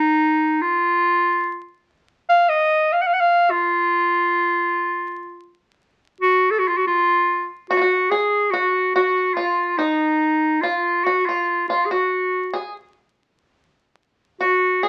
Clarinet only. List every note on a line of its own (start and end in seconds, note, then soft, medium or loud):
0.00 0.63 D#4 medium
0.61 1.74 F4 medium
2.29 2.50 F5 loud
2.49 2.94 D#5 medium
2.92 3.03 F5 medium
3.01 3.09 F#5 medium
3.07 3.15 F5 medium
3.13 3.22 F#5 medium
3.20 3.52 F5 loud
3.50 5.59 F4 medium
6.21 6.52 F#4 loud
6.51 6.60 A4 medium
6.59 6.69 F#4 medium
6.68 6.79 F4 medium
6.78 6.87 F#4 medium
6.87 7.50 F4 loud
7.70 8.12 F#4 loud
8.10 8.52 G#4 medium
8.51 8.94 F#4 medium
8.95 9.36 F#4 medium
9.34 9.79 F4 medium
9.77 10.63 D#4 medium
10.61 11.06 F4 medium
11.05 11.27 F#4 medium
11.26 11.68 F4 medium
11.69 11.87 F4 medium
11.86 11.93 G#4 medium
11.91 12.74 F#4 medium
14.41 14.85 F#4 medium
14.83 14.89 G#4 medium